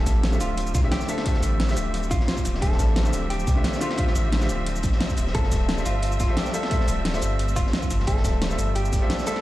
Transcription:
Already playing: grand piano D3 A3 F4 G4 C5 E5, string section F3 G3 C4 E5, clean electric guitar A4, impact
0.06 sub bass A1, kick, snare, closed hi-hat, shaker
0.23 snare, closed hi-hat
0.31 grand piano D3 A3 F4 G4 C5 E5, shaker
0.41 sub bass D1, clean electric guitar F4, closed hi-hat, shaker
0.57 closed hi-hat
0.67 shaker
0.74 sub bass C2, clean electric guitar F4, kick, snare, closed hi-hat, shaker
0.83 grand piano D3 A3 F4 G4 C5 E5
0.91 clean electric guitar G4, snare, closed hi-hat
1.01 snare, shaker
1.08 grand piano D3 A3 F4 G4 C5 E5, clean electric guitar A4, closed hi-hat, shaker
1.18 snare
1.24 grand piano D3 A3 F4 G4 C5 E5, kick, closed hi-hat
1.34 snare
1.43 sub bass A1, closed hi-hat, shaker
1.60 snare, closed hi-hat, open hi-hat
1.67 grand piano D3 A3 F4 G4 C5 E5, snare, shaker
1.77 sub bass D1, closed hi-hat, shaker
1.94 closed hi-hat
2.03 shaker
2.11 sub bass A1, clean electric guitar F4, kick, snare, closed hi-hat, shaker
2.20 snare
2.28 snare, closed hi-hat
2.37 kick, shaker
2.45 sub bass D1, snare, closed hi-hat, shaker
2.55 snare
2.60 sub bass D1, grand piano D3 A3 F4 G4 C5 E5, clean electric guitar A4, kick, closed hi-hat
2.72 snare
2.79 sub bass A1, kick, snare, closed hi-hat, shaker
2.96 snare, closed hi-hat
3.04 grand piano D3 A3 F4 G4 C5 E5, shaker
3.13 sub bass D1, closed hi-hat, shaker
3.30 clean electric guitar G4, closed hi-hat
3.39 shaker
3.47 sub bass C2, kick, snare, closed hi-hat, shaker
3.56 grand piano D3 A3 F4 G4 C5 E5
3.64 snare, closed hi-hat
3.73 snare, shaker
3.80 grand piano D3 A3 F4 G4 C5 E5, clean electric guitar F4, closed hi-hat, shaker
3.90 snare
3.97 grand piano D3 A3 F4 G4 C5 E5, kick, closed hi-hat
4.07 snare
4.15 sub bass A1, closed hi-hat, shaker
4.32 snare, closed hi-hat, open hi-hat
4.40 grand piano D3 A3 F4 G4 C5 E5, snare, shaker
4.49 sub bass D1, closed hi-hat, shaker
4.66 closed hi-hat
4.76 shaker
4.83 sub bass A1, kick, snare, closed hi-hat, shaker
4.93 snare
5.01 snare, closed hi-hat
5.10 kick, shaker
5.17 sub bass D1, snare, closed hi-hat, shaker
5.27 snare
5.33 sub bass G1, grand piano G3 F4 A4 C5 E5, string section A3, clean electric guitar A4, kick, closed hi-hat
5.44 snare
5.51 sub bass D1, kick, snare, closed hi-hat, shaker
5.68 snare, closed hi-hat
5.76 grand piano G3 F4 A4 C5 E5, shaker
5.85 sub bass G1, clean electric guitar F4, closed hi-hat, shaker
6.02 closed hi-hat
6.12 shaker
6.20 sub bass F1, clean electric guitar F4, kick, snare, closed hi-hat, shaker
6.28 grand piano G3 F4 A4 C5 E5
6.37 clean electric guitar G4, snare, closed hi-hat
6.46 snare, shaker
6.53 grand piano G3 F4 A4 C5 E5, clean electric guitar A4, closed hi-hat, shaker
6.63 snare
6.70 grand piano G3 F4 A4 C5 E5, kick, closed hi-hat
6.80 snare
6.88 sub bass D1, closed hi-hat, shaker
7.05 snare, closed hi-hat, open hi-hat
7.13 grand piano G3 F4 A4 C5 E5, snare, shaker
7.22 sub bass G1, closed hi-hat, shaker
7.39 closed hi-hat
7.48 shaker
7.56 sub bass D1, clean electric guitar F4, kick, snare, closed hi-hat, shaker
7.67 snare
7.73 snare, closed hi-hat
7.83 kick, shaker
7.90 sub bass G1, snare, closed hi-hat, shaker
8.00 snare
8.06 sub bass G1, grand piano G3 F4 A4 C5 E5, clean electric guitar A4, kick, closed hi-hat
8.17 snare
8.24 sub bass D1, kick, snare, closed hi-hat, shaker
8.42 snare, closed hi-hat
8.49 grand piano G3 F4 A4 C5 E5, shaker
8.58 sub bass G1, closed hi-hat, shaker
8.75 clean electric guitar G4, closed hi-hat
8.85 shaker
8.93 sub bass F1, kick, snare, closed hi-hat, shaker
9.01 grand piano G3 F4 A4 C5 E5
9.10 snare, closed hi-hat
9.19 snare, shaker
9.26 grand piano G3 F4 A4 C5 E5, clean electric guitar A4, snare, closed hi-hat, shaker
9.36 snare

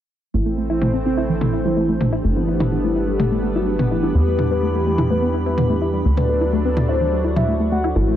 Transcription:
0.34 analog synth bass A1, analog synth pad E3 A3 C4, synth arpeggio sound A3, ambient pad D4, soft synth lead E4
0.46 synth arpeggio sound A3
0.58 synth arpeggio sound A3, ambient pad C5
0.70 synth arpeggio sound E4, soft synth lead E4
0.82 synth arpeggio sound A3, mid tom
0.94 synth arpeggio sound C4
1.05 soft synth lead C4, synth arpeggio sound E4
1.17 synth arpeggio sound E4, ambient pad G4
1.29 synth arpeggio sound E3, soft synth lead E4
1.41 synth arpeggio sound A3, mid tom
1.53 synth arpeggio sound E4
1.65 synth arpeggio sound G3, soft synth lead E4
1.77 synth arpeggio sound A3
1.89 synth arpeggio sound A3
2.01 synth arpeggio sound A3, mid tom
2.13 synth arpeggio sound E4
2.25 analog synth bass G1, analog synth pad G3 A3 B3, synth arpeggio sound A3
2.36 synth arpeggio sound B3, soft synth lead E4
2.48 synth arpeggio sound E4
2.60 synth arpeggio sound E4, mid tom
2.72 synth arpeggio sound E3
2.84 synth arpeggio sound A3, soft synth lead E4
2.96 synth arpeggio sound E4
3.08 synth arpeggio sound G3, soft synth lead G4, ambient pad B5
3.20 synth arpeggio sound A3, mid tom
3.32 synth arpeggio sound A3
3.44 synth arpeggio sound A3
3.56 synth arpeggio sound E4, soft synth lead F#4
3.67 synth arpeggio sound A3
3.79 synth arpeggio sound B3, mid tom
3.91 soft synth lead E4, synth arpeggio sound E4
4.03 synth arpeggio sound E4
4.15 analog synth bass E2, analog synth pad E3 G3, synth arpeggio sound E3, soft synth lead B4
4.27 synth arpeggio sound A3
4.39 synth arpeggio sound E4, mid tom
4.51 synth arpeggio sound G3, soft synth lead B4
4.63 synth arpeggio sound A3
4.75 synth arpeggio sound A3
4.86 synth arpeggio sound A3, soft synth lead G4
4.98 synth arpeggio sound E4, mid tom
5.10 synth arpeggio sound A3, soft synth lead B4
5.22 synth arpeggio sound B3
5.34 synth arpeggio sound E4
5.46 synth arpeggio sound E4, soft synth lead B4
5.58 synth arpeggio sound E3, mid tom
5.70 synth arpeggio sound A3
5.82 synth arpeggio sound E4
5.94 synth arpeggio sound G3
6.05 analog synth bass D2, analog synth pad F#3 A3 D4, synth arpeggio sound A3, ambient pad F#4
6.17 synth arpeggio sound A3, soft synth lead B4, mid tom
6.29 synth arpeggio sound A3
6.41 synth arpeggio sound E4
6.53 synth arpeggio sound A3
6.65 synth arpeggio sound C4, soft synth lead B4
6.77 synth arpeggio sound E4, mid tom
6.89 synth arpeggio sound E4, soft synth lead C5, ambient pad E5
7.01 synth arpeggio sound E3
7.13 synth arpeggio sound A3
7.24 synth arpeggio sound E4
7.36 synth arpeggio sound F#3, soft synth lead E5, mid tom
7.48 synth arpeggio sound A3
7.60 synth arpeggio sound A3
7.72 synth arpeggio sound A3, soft synth lead F#5
7.84 synth arpeggio sound E4
7.96 analog synth bass A1, analog synth pad E3 A3 C4, synth arpeggio sound A3, soft synth lead E4, ambient pad G4
8.08 synth arpeggio sound A3, ambient pad C5

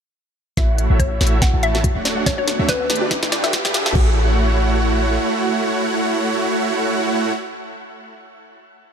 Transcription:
0.57 808-style bass A1, supersaw synth A3 E4 F#4 C#5 F#5, synth arpeggio sound F#4, synth pluck E5, kick, snare, closed hi-hat, riser
0.78 synth arpeggio sound E5, closed hi-hat
0.90 808-style bass A1, supersaw synth A3 E4 F#4 C#5 E5, synth arpeggio sound F#5
0.99 synth pluck C#5, kick, closed hi-hat
1.11 synth arpeggio sound F#4
1.21 808-style bass A1, supersaw synth A3 E4 F#4 C#5 E5, synth arpeggio sound F#4, snare, closed hi-hat
1.27 closed hi-hat
1.42 synth arpeggio sound E5, synth pluck F#5, kick, snare, closed hi-hat
1.54 808-style bass A1, supersaw synth A3 E4 F#4 C#5 A5, synth arpeggio sound F#5
1.63 synth pluck E5, closed hi-hat
1.75 synth arpeggio sound F#4, snare
1.84 synth arpeggio sound F#4, kick, closed hi-hat
1.96 808-style bass D1, supersaw synth A3 D4 F#4 C#5 F#5
2.05 synth arpeggio sound D5, snare, closed hi-hat
2.17 synth arpeggio sound F#5
2.26 808-style bass D1, supersaw synth A3 C#5 F#5, synth pluck C#5, kick, snare, closed hi-hat
2.38 synth arpeggio sound F#4, synth pluck C#5
2.47 synth arpeggio sound F#4, snare, closed hi-hat
2.59 808-style bass D2, supersaw synth A3 D4 F#4 C#5 E5
2.68 synth pluck B4, synth arpeggio sound D5, kick, snare, closed hi-hat
2.80 synth arpeggio sound F#5
2.90 808-style bass G1, supersaw synth A3 D4 G4 B4 D5, snare, closed hi-hat
2.96 closed hi-hat
3.01 synth arpeggio sound F#4
3.11 synth arpeggio sound G4, kick, snare, closed hi-hat
3.23 808-style bass G1, supersaw synth A3 D4 G4 B4 G5, snare
3.32 synth arpeggio sound D5, snare, closed hi-hat
3.44 synth arpeggio sound E5, snare
3.53 kick, snare, closed hi-hat
3.65 808-style bass G2, supersaw synth A3 D4 G4 B4 E5, synth arpeggio sound G4, snare
3.74 synth arpeggio sound G4, snare, closed hi-hat
3.86 snare
3.95 808-style bass A1, supersaw synth A3 E4 F#4 C#5 F#5, synth arpeggio sound F#4, kick, crash

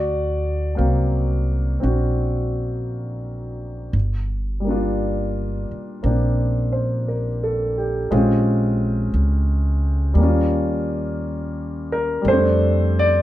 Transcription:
Already playing: upright bass D2, grand piano F#4 D5
0.75 upright bass C2, grand piano F#3 A#3 C4 F5
1.80 upright bass A#1, grand piano C4 D4 F#4
3.93 upright bass G1
4.60 grand piano G3
4.65 grand piano A#3 D4
4.71 grand piano F4
5.71 muted upright bass stroke
6.03 upright bass A#1, grand piano A#3 C4 D4
6.72 grand piano C5
7.08 grand piano A#4
7.43 grand piano A4
7.78 grand piano G4
8.11 upright bass A#1, grand piano G#3 C4 C#4 F4
9.14 upright bass C#2
10.14 upright bass D#2, grand piano G3 A#3
10.20 grand piano C#4 F4
11.92 grand piano A#4
12.21 upright bass F2, grand piano G3 A3
12.28 grand piano C4 A4 C5
12.32 grand piano D4
12.99 grand piano D5

